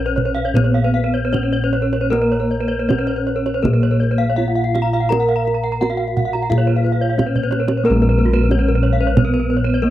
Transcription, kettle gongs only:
0.00 0.53 A#1 medium
0.00 1.28 A#4 medium
0.54 2.84 A#2 medium
1.33 1.41 B3 soft
2.12 4.34 A#4 medium
2.89 2.97 B3 soft
3.64 5.77 A#2 medium
4.38 4.46 B3 soft
5.10 7.14 A#4 medium
5.81 5.89 B3 soft
6.51 8.47 A#2 medium
7.19 7.27 B3 soft
7.85 9.79 A#4 medium
7.90 9.90 A#1 medium
8.50 8.58 B3 soft
9.83 9.90 B3 soft

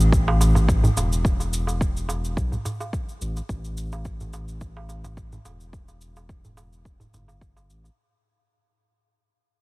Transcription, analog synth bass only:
0.00 0.89 A1 medium
0.97 2.36 E1 medium
2.37 2.56 B1 medium
3.21 3.40 A1 medium
3.49 5.38 A1 medium
5.45 7.06 E1 medium
7.13 7.71 G1 medium
7.70 7.89 A1 medium

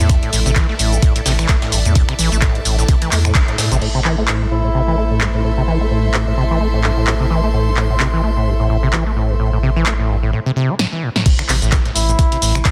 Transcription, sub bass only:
0.00 0.18 E2 loud
0.33 0.43 A1 medium
0.46 0.64 A1 medium
0.79 0.99 A1 medium
1.26 1.45 A1 medium
1.72 1.83 A1 medium
1.85 2.04 E2 loud
2.19 2.29 A1 loud
2.32 2.50 A1 medium
2.65 2.85 A1 medium
3.12 3.31 E2 loud
3.58 3.69 A2 loud
3.72 3.80 A1 loud
3.82 10.33 A1 medium
11.49 11.60 A1 loud
11.62 11.80 A1 medium
11.96 12.15 A1 medium
12.42 12.61 A1 medium

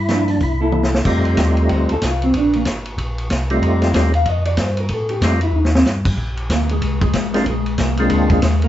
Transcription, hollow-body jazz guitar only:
0.10 0.42 F3 medium
0.10 0.42 A#3 medium
0.10 0.42 D4 medium
0.61 1.03 A#3 medium
0.61 1.03 E4 medium
0.61 1.03 A4 medium
1.73 1.91 C5 medium
1.91 2.02 A4 medium
2.05 2.23 F4 medium
2.24 2.35 C4 medium
2.37 2.55 D4 medium
2.56 2.62 A#3 medium
4.15 4.26 F5 medium
4.29 4.45 D#5 medium
4.46 4.58 D5 medium
4.61 4.79 C5 medium
4.80 4.91 A#4 medium
4.94 5.11 A4 medium
5.10 5.22 G4 medium
5.24 5.42 F4 medium
5.43 5.55 E4 medium
5.56 5.74 D#4 medium
5.75 5.82 C4 medium
6.53 6.71 A#3 medium
6.53 6.71 A#4 medium
6.71 7.00 G#3 medium
6.71 7.01 G#4 medium
7.02 7.32 G#3 medium
7.02 7.32 G#4 medium
7.34 7.47 A#3 medium
7.34 7.46 A#4 medium
7.50 7.97 G#3 medium
7.50 7.96 G#4 medium
7.82 8.00 A#3 medium
7.82 7.99 A#4 medium
7.99 8.29 G#3 medium
7.99 8.29 G#4 medium
8.31 8.60 G#3 medium
8.31 8.60 G#4 medium
8.64 8.68 A#3 medium
8.64 8.68 A#4 loud

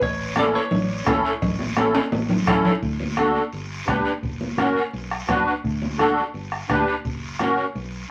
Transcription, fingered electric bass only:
0.01 0.57 A1 medium
0.72 1.00 A1 medium
1.07 1.21 A1 medium
1.42 1.98 A1 medium
2.12 2.40 A1 medium
2.47 2.61 A1 medium
2.82 3.39 D2 medium
3.53 3.81 G1 medium
3.88 4.02 C#2 medium
4.23 4.79 F#1 medium
4.93 5.21 B1 medium
5.29 5.43 F#2 medium
5.64 6.20 D2 medium
6.34 6.62 G1 medium
6.70 6.84 D2 medium
7.05 7.61 F#1 medium
7.75 8.03 B1 medium

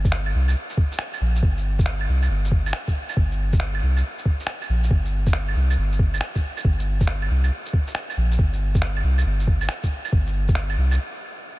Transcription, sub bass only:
0.00 0.33 G1 loud
0.34 0.55 C2 medium
1.21 1.42 A#1 medium
1.43 2.07 G1 loud
2.08 2.29 C2 medium
2.30 2.72 G1 medium
3.17 3.81 G1 loud
3.82 4.03 C2 medium
4.69 4.90 A#1 medium
4.91 5.55 G1 loud
5.56 5.76 C2 medium
5.78 6.20 G1 medium
6.65 7.29 G1 loud
7.30 7.50 C2 medium
8.17 8.37 A#1 medium
8.39 9.03 G1 loud
9.03 9.24 C2 medium
9.25 9.68 G1 medium
10.12 10.77 G1 loud
10.77 10.98 C2 medium

